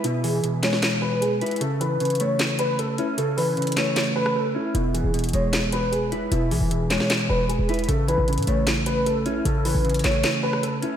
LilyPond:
<<
  \new Staff \with { instrumentName = "Grand piano" } { \time 4/4 \key a \lydian \tempo 4 = 153 e'8 gis'4 cis''8 r8 b'8 gis'8 e'8 | a'8 b'4 cis''8 r8 b'8 a'8 e'8 | a'8 b'4 cis''8 r8 b'8 a'8 e'8 | e'8 gis'4 cis''8 r8 b'8 gis'8 e'8 |
e'8 gis'4 cis''8 r8 b'8 gis'8 e'8 | a'8 b'4 cis''8 r8 b'8 a'8 e'8 | a'8 b'4 cis''8 r8 b'8 a'8 e'8 | }
  \new Staff \with { instrumentName = "Clean electric guitar" } { \clef bass \time 4/4 \key a \lydian <b, b'>8 e8 b,8 gis2 b'8 | cis8 e8 cis8 a2 cis'8 | cis8 e8 cis8 a2 cis'8 | b,8 e8 b,8 gis2 b'8 |
b,8 e8 b,8 gis2 b'8 | cis8 e8 cis8 a2 cis'8 | cis8 e8 cis8 a2 cis'8 | }
  \new Staff \with { instrumentName = "808-style bass" } { \clef bass \time 4/4 \key a \lydian r1 | r1 | r1 | e,,8. e,,8. e,,2~ e,,8 |
e,,8 b,,16 e,,4 r8. e,,8. e,,8. | a,,8. a,,8 a,16 a,,2~ a,,8 | a,,8. a,,8. a,,8 r2 | }
  \new DrumStaff \with { instrumentName = "Drums" } \drummode { \time 4/4 hh8 hho8 hh8 <hc hh sn>16 sn16 <hc hh sn>4 hh8 hh32 hh32 hh32 hh32 | hh8 hh8 hh32 hh32 hh32 hh32 hh8 <hc hh sn>8 hh8 hh8 hh8 | hh8 hho8 hh32 hh32 hh32 hh32 <hc hh sn>8 <hc hh sn>8. ss16 r4 | hh8 hh8 hh32 hh32 hh32 hh32 hh8 <hc hh sn>8 hh8 hh8 hh8 |
hh8 hho8 hh8 <hc hh sn>16 sn16 <hc hh sn>4 hh8 hh32 hh32 hh32 hh32 | hh8 hh8 hh32 hh32 hh32 hh32 hh8 <hc hh sn>8 hh8 hh8 hh8 | hh8 hho8 hh32 hh32 hh32 hh32 <hc hh sn>8 <hc hh sn>8. ss16 hh8 hh8 | }
>>